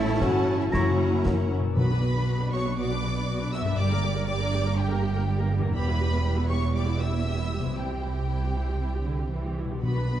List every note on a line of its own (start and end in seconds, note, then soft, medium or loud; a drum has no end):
0.00 0.19 A1 medium
0.00 0.75 A2 medium
0.00 0.75 E3 medium
0.00 0.70 C#4 medium
0.00 0.99 C#4 medium
0.00 0.19 E4 loud
0.00 0.20 E4 loud
0.00 0.70 E4 medium
0.00 0.71 C#5 medium
0.00 0.20 E5 medium
0.00 0.73 A5 medium
0.00 0.59 E6 medium
0.08 0.75 A4 medium
0.20 0.73 G1 medium
0.20 0.73 C#4 medium
0.20 0.59 F#4 loud
0.20 1.25 E5 medium
0.20 0.58 F#5 medium
0.20 concert bass drum medium
0.20 snare medium
0.34 1.38 C#5 medium
0.47 0.75 A5 medium
0.59 0.72 E4 medium
0.59 0.65 E5 medium
0.59 1.63 E6 medium
0.72 1.54 F#1 medium
0.72 1.79 F#2 medium
0.72 1.51 A#3 medium
0.72 1.55 C#4 medium
0.72 0.91 E4 medium
0.72 1.55 E4 medium
0.72 1.50 F#4 medium
0.72 1.54 C#5 medium
0.72 1.49 F#5 medium
0.72 0.91 A#5 medium
0.72 1.56 A#5 medium
0.72 0.98 C#6 medium
0.72 concert bass drum medium
0.72 snare medium
0.87 1.79 C#3 soft
1.00 1.79 C#4 medium
1.13 1.79 A#4 medium
1.26 1.79 E5 medium
1.26 concert bass drum medium
1.26 snare medium
1.39 1.79 C#5 medium
1.51 1.79 A#5 medium
1.59 3.71 B2 medium
1.64 3.73 B3 medium
1.64 1.79 E6 medium
1.68 3.76 F#4 soft
1.73 2.49 B2 medium
1.73 2.48 B4 medium
1.73 3.73 D5 soft
1.77 3.74 B1 medium
1.77 3.74 B2 medium
1.77 1.89 B3 medium
1.77 1.89 F#4 medium
1.77 2.49 B5 medium
1.90 2.02 D4 medium
1.90 2.02 B4 soft
2.03 2.15 B3 soft
2.03 2.15 F#4 soft
2.16 2.28 D4 medium
2.16 2.28 B4 medium
2.28 2.39 B3 soft
2.28 2.39 F#4 soft
2.41 2.53 D4 medium
2.41 2.53 B4 medium
2.53 2.65 B3 medium
2.53 2.65 F#4 medium
2.53 2.78 C#5 medium
2.53 2.78 C#6 medium
2.66 2.78 D4 medium
2.66 2.78 B4 medium
2.77 2.90 B3 medium
2.77 2.90 F#4 medium
2.77 3.51 D5 medium
2.77 3.51 D6 medium
2.91 3.03 D4 medium
2.91 3.03 B4 medium
3.05 3.16 B3 medium
3.05 3.16 F#4 medium
3.17 3.29 D4 medium
3.17 3.28 B4 medium
3.29 3.40 B3 medium
3.29 3.40 F#4 medium
3.42 3.54 D4 soft
3.42 3.54 B4 soft
3.53 3.66 B3 medium
3.53 3.66 F#4 medium
3.53 3.78 E5 medium
3.53 3.61 E6 medium
3.61 5.70 G2 medium
3.65 5.72 A#3 medium
3.65 3.78 D4 medium
3.65 3.78 B4 medium
3.70 5.66 G4 medium
3.74 5.72 G2 medium
3.74 5.76 D5 medium
3.74 4.27 D5 medium
3.74 4.26 D6 loud
3.78 5.73 G1 medium
3.78 3.90 G3 medium
3.78 3.90 G4 medium
3.92 4.03 A#3 medium
3.92 4.03 A#4 medium
4.04 4.16 G3 medium
4.04 4.16 G4 medium
4.16 4.28 A#3 medium
4.16 4.28 A#4 medium
4.27 4.40 G3 medium
4.27 4.40 G4 medium
4.27 4.77 D5 medium
4.27 4.76 D6 loud
4.41 4.53 A#3 medium
4.41 4.53 A#4 medium
4.54 4.66 G3 medium
4.54 4.66 G4 medium
4.65 4.78 A#3 medium
4.65 4.78 A#4 medium
4.78 4.89 G3 medium
4.78 4.89 G4 medium
4.78 5.51 G4 medium
4.78 5.52 G5 medium
4.90 5.03 A#3 medium
4.90 5.02 A#4 medium
5.03 5.15 G3 medium
5.03 5.15 G4 medium
5.15 5.27 A#3 medium
5.15 5.27 A#4 medium
5.26 5.38 G3 medium
5.26 5.38 G4 medium
5.39 5.51 A#3 medium
5.39 5.51 A#4 medium
5.50 5.63 G3 medium
5.50 5.63 G4 medium
5.58 7.70 E2 medium
5.58 5.75 A#4 soft
5.63 5.76 A#3 medium
5.63 7.72 B3 medium
5.67 9.57 G4 medium
5.72 5.87 G3 medium
5.72 5.87 G4 medium
5.72 7.71 E5 medium
5.72 6.47 B5 loud
5.76 7.73 E1 medium
5.76 7.73 E2 medium
5.76 6.47 B4 medium
5.88 6.01 B3 medium
5.88 6.01 E4 medium
6.00 6.13 G3 soft
6.00 6.13 G4 medium
6.13 6.26 B3 medium
6.13 6.26 E4 medium
6.24 6.37 G3 medium
6.24 6.37 G4 medium
6.37 6.51 B3 medium
6.37 6.50 E4 soft
6.49 6.63 G3 medium
6.49 6.63 G4 medium
6.49 6.77 C#5 medium
6.49 6.75 C#6 medium
6.62 6.75 B3 medium
6.62 6.75 E4 soft
6.74 6.87 G3 medium
6.74 6.87 G4 medium
6.74 7.01 D5 medium
6.74 7.00 D6 medium
6.88 7.01 B3 medium
6.88 7.01 E4 medium
6.98 7.12 G3 soft
6.98 7.12 G4 soft
6.98 7.77 E5 medium
6.98 7.76 E6 medium
7.11 7.25 B3 soft
7.11 7.25 E4 soft
7.25 7.37 G3 soft
7.25 7.37 G4 soft
7.37 7.51 B3 soft
7.37 7.50 E4 soft
7.49 7.63 G3 soft
7.49 7.63 G4 soft
7.58 9.75 C3 soft
7.58 7.76 B3 soft
7.58 7.74 E4 soft
7.63 9.77 C4 soft
7.67 9.80 E4 soft
7.72 7.88 G3 soft
7.72 7.88 E4 soft
7.72 9.82 E5 soft
7.77 9.59 C2 medium
7.77 8.23 C3 medium
7.77 9.54 G4 medium
7.77 9.57 G5 medium
7.89 8.02 C4 soft
7.89 8.02 G4 soft
8.02 8.15 G3 soft
8.02 8.16 E4 soft
8.15 8.29 C4 soft
8.15 8.29 G4 soft
8.29 9.02 C3 medium
8.29 8.41 G3 soft
8.29 8.41 E4 soft
8.43 8.55 C4 soft
8.43 8.55 G4 soft
8.55 8.67 G3 soft
8.55 8.68 E4 soft
8.68 8.81 C4 soft
8.68 8.81 G4 soft
8.81 8.93 G3 soft
8.81 8.93 E4 soft
8.93 9.06 C4 soft
8.93 9.06 G4 soft
9.05 9.31 D3 medium
9.05 9.19 G3 soft
9.05 9.19 E4 soft
9.19 9.31 C4 soft
9.19 9.32 G4 soft
9.32 9.82 E3 medium
9.32 9.44 G3 soft
9.32 9.44 E4 soft
9.46 9.58 C4 soft
9.46 9.58 G4 soft
9.58 9.70 G3 soft
9.58 9.71 E4 soft
9.65 10.20 B2 soft
9.69 9.84 C4 soft
9.69 10.20 D4 soft
9.69 9.83 G4 soft
9.74 10.20 F#4 soft
9.78 10.20 B4 soft
9.83 10.20 B1 medium
9.83 10.20 B2 medium
9.83 9.96 B3 soft
9.83 9.95 F#4 soft
9.83 10.20 B4 medium
9.83 10.20 B5 medium
9.96 10.08 D4 soft
9.96 10.09 B4 soft
10.10 10.20 B3 soft
10.10 10.20 F#4 soft